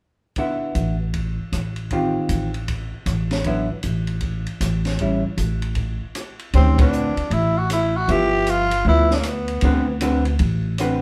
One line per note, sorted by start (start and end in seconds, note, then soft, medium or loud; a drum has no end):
0.36 0.95 D3 soft
0.36 0.96 B3 soft
0.36 0.96 E4 soft
0.36 0.96 F#4 soft
0.36 kick soft
0.36 ride soft
0.75 1.37 A1 medium
0.75 hi-hat pedal soft
0.75 ride soft
1.14 kick soft
1.14 ride soft
1.52 2.14 A1 medium
1.52 cross-stick soft
1.52 hi-hat pedal soft
1.52 ride soft
1.76 ride soft
1.91 2.50 D#3 soft
1.91 2.50 C4 soft
1.91 2.50 F4 soft
1.91 2.50 G4 soft
1.91 kick soft
1.91 ride soft
2.29 2.91 A1 medium
2.29 hi-hat pedal soft
2.29 ride soft
2.54 ride soft
2.68 kick soft
2.68 ride medium
3.06 3.68 A1 medium
3.06 cross-stick soft
3.06 hi-hat pedal soft
3.06 ride soft
3.31 snare soft
3.31 ride soft
3.44 3.68 D3 soft
3.44 3.68 F#3 soft
3.44 3.68 B3 soft
3.44 3.68 E4 soft
3.44 kick soft
3.44 ride soft
3.83 4.46 A1 medium
3.83 hi-hat pedal soft
3.83 ride soft
4.07 ride soft
4.21 kick soft
4.21 ride soft
4.47 ride soft
4.61 5.23 A1 medium
4.61 cross-stick medium
4.61 hi-hat pedal soft
4.61 ride medium
4.85 snare soft
4.85 ride soft
4.99 5.22 G3 soft
4.99 5.23 C#4 soft
4.99 5.23 E4 soft
4.99 kick soft
4.99 ride soft
5.37 6.00 A1 medium
5.37 hi-hat pedal soft
5.37 ride soft
5.62 ride soft
5.75 kick soft
5.75 ride soft
6.15 cross-stick medium
6.15 hi-hat pedal soft
6.15 ride soft
6.39 ride soft
6.53 7.13 D2 medium
6.53 6.76 D#3 soft
6.53 6.78 C4 medium
6.53 6.76 C#4 soft
6.53 6.77 G4 soft
6.53 6.77 C5 medium
6.53 kick soft
6.53 ride medium
6.78 7.12 D3 soft
6.78 7.12 C4 soft
6.78 7.35 D4 medium
6.78 7.13 F#4 soft
6.78 7.13 B4 medium
6.78 kick medium
6.78 ride medium
6.92 hi-hat pedal soft
7.17 muted upright bass stroke soft
7.17 ride soft
7.30 8.04 A1 medium
7.30 7.60 E4 medium
7.30 kick soft
7.30 ride soft
7.59 7.71 F#4 medium
7.70 7.98 E4 medium
7.70 cross-stick medium
7.70 hi-hat pedal medium
7.70 ride medium
7.97 8.13 F#4 medium
8.08 8.81 G1 medium
8.08 8.66 F3 medium
8.08 8.67 B3 medium
8.08 8.67 E4 medium
8.08 8.52 G4 loud
8.08 kick soft
8.08 ride medium
8.47 8.87 F4 medium
8.47 hi-hat pedal soft
8.47 ride medium
8.71 ride medium
8.85 9.58 D2 medium
8.85 9.08 F3 medium
8.85 9.08 B3 medium
8.85 9.09 E4 medium
8.85 kick soft
8.89 9.16 E4 medium
9.11 9.19 D4 medium
9.11 snare soft
9.20 9.28 A#3 soft
9.20 hi-hat pedal soft
9.20 ride medium
9.24 10.03 B3 medium
9.24 cross-stick medium
9.48 ride soft
9.61 10.36 D2 medium
9.61 9.85 D3 medium
9.61 9.85 C4 medium
9.61 9.86 F#4 medium
9.61 9.86 B4 medium
9.61 kick soft
9.61 ride medium
10.01 10.23 D3 medium
10.01 10.23 C4 medium
10.01 10.24 F#4 medium
10.01 10.24 B4 medium
10.01 hi-hat pedal soft
10.01 ride medium
10.25 ride soft
10.39 11.02 A1 medium
10.39 kick soft
10.39 ride medium
10.78 11.02 D3 medium
10.78 11.02 C4 medium
10.78 11.02 F#4 medium
10.78 11.02 B4 medium
10.78 cross-stick soft
10.78 hi-hat pedal soft
10.78 ride medium